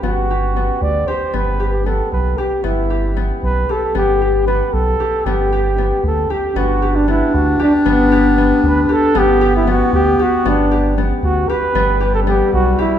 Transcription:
<<
  \new Staff \with { instrumentName = "Flugelhorn" } { \time 5/8 \key g \major \tempo 4 = 115 fis'4. d''8 c''8 | b'8. g'16 a'8 b'8 g'8 | e'4 r8 b'8 a'8 | g'4 b'8 a'4 |
g'4. a'8 g'8 | fis'8. d'16 e'8 fis'8 d'8 | b4. b'16. b'32 a'8 | g'8. e'16 fis'8 g'8 fis'8 |
d'4 r8 fis'8 b'8~ | b'8. a'16 g'8 fis'8 e'8 | }
  \new Staff \with { instrumentName = "Harp" } { \time 5/8 \key g \major b8 g'8 b4 g'8 | b8 g'8 b4 g'8 | b8 g'8 b4 g'8 | b8 g'8 b4 g'8 |
b8 g'8 b4 g'8 | b8 g'8 b4 g'8 | b8 g'8 b4 g'8 | b8 g'8 b4 g'8 |
b8 g'8 b4 g'8 | b8 g'8 b4 g'8 | }
  \new Staff \with { instrumentName = "Clarinet" } { \time 5/8 \key g \major r2 r8 | r2 r8 | r2 r8 | r2 r8 |
r2 r8 | d'2~ d'8~ | d'2~ d'8 | b2~ b8~ |
b2 r8 | g2~ g8 | }
  \new Staff \with { instrumentName = "Sub bass" } { \clef bass \time 5/8 \key g \major g,,4. d,8 r8 | g,,4. b,,8 r8 | g,,4. b,,8 r8 | g,,4. b,,8 r8 |
g,,4. d,8 r8 | g,,4. d,8 r8 | g,,4. d,8 r8 | g,,4. d,8 r8 |
g,,4. d,8 r8 | g,,4. b,,8 r8 | }
>>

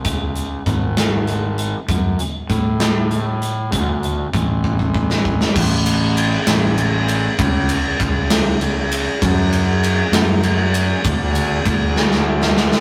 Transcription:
<<
  \new Staff \with { instrumentName = "Fingered electric bass" } { \clef bass \time 6/8 \key d \dorian \tempo 4. = 66 cis,4 gis,,2 | fis,8 r8 a,2 | d,4 a,,2 | a,,4. a,,4. |
cis,4 cis,2 | fis,4. fis,4. | d,4 d,2 | }
  \new DrumStaff \with { instrumentName = "Drums" } \drummode { \time 6/8 <hh bd>8 hh8 <hh bd>8 <hh sn>8 hh8 hh8 | <hh bd>8 hh8 <hh bd>8 <hh sn>8 hh8 hh8 | <hh bd>8 hh8 <hh bd>8 bd16 bd16 bd16 sn16 bd16 sn16 | <cymc bd>8 cymr8 cymr8 <cymr sn>8 cymr8 cymr8 |
<bd cymr>8 cymr8 <bd cymr>8 <cymr sn>8 cymr8 cymr8 | <bd cymr>8 cymr8 cymr8 <cymr sn>8 cymr8 cymr8 | <bd cymr>8 cymr8 <bd cymr>8 sn16 sn8 sn16 sn16 sn16 | }
>>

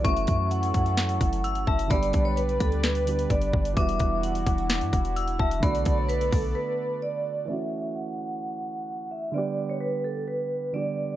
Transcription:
<<
  \new Staff \with { instrumentName = "Synth bell" } { \time 4/4 \key fis \phrygian \tempo 4 = 129 cis'''2. e'''8 a''8 | b''1 | d'''2. e'''8 a''8 | b''2. r4 |
r1 | r1 | }
  \new Staff \with { instrumentName = "Vibraphone" } { \time 4/4 \key fis \phrygian e''4 fis''8 fis''2 e''8 | d''8. cis''16 b'8 a'8 b'4 d''4 | e''4 fis''8 fis''2 e''8 | d''8. cis''16 b'8 a'8 b'4 d''4 |
e''4 fis''8 fis''2 e''8 | d''8. cis''16 b'8 a'8 b'4 d''4 | }
  \new Staff \with { instrumentName = "Analog synth pad" } { \time 4/4 \key fis \phrygian <fis cis' e' a'>1 | <g d' b' d''>1 | <e e' fis'>1 | <b a' d''>1 |
r1 | r1 | }
  \new Staff \with { instrumentName = "Grand piano" } { \time 4/4 \key fis \phrygian <e a cis' fis'>1 | <d g b g'>2~ <d g b g'>8 <d g b g'>4. | <e g b fis'>1 | <d a b fis'>1 |
<e a cis' fis'>1 | <d g b g'>2. <d g b g'>4 | }
  \new Staff \with { instrumentName = "808-style bass" } { \clef bass \time 4/4 \key fis \phrygian fis,,8 fis,4 fis,4 fis,,8 g,,8 fis,,8 | g,,8 b,,4 d,4. g,,8 g,,8 | e,,8 e,,4 e,,8. g,16 e,,4 e,,8 | b,,8 b,,4 b,,8 r2 |
r1 | r1 | }
  \new DrumStaff \with { instrumentName = "Drums" } \drummode { \time 4/4 <hh bd>16 hh16 <hh bd>8 hh16 hh16 <hh bd>16 hh16 <hh sn>16 hh16 <hh bd>16 hh16 hh16 hh16 bd16 hh16 | <hh bd>16 hh16 <hh bd>8 hh16 hh16 <hh hho bd>16 hh16 <hh sn>16 hh16 hh16 hh16 <hh bd>16 hh16 bd16 hh16 | <hh bd>16 hh16 <hh bd>8 hh16 hh16 <hh bd>16 hh16 <hh sn>16 hh16 <hh bd>16 hh16 hh16 hh16 bd16 hh16 | <hh bd>16 hh16 <hh bd>8 hh16 hh16 <hho bd>8 r4 r4 |
r4 r4 r4 r4 | r4 r4 r4 r4 | }
>>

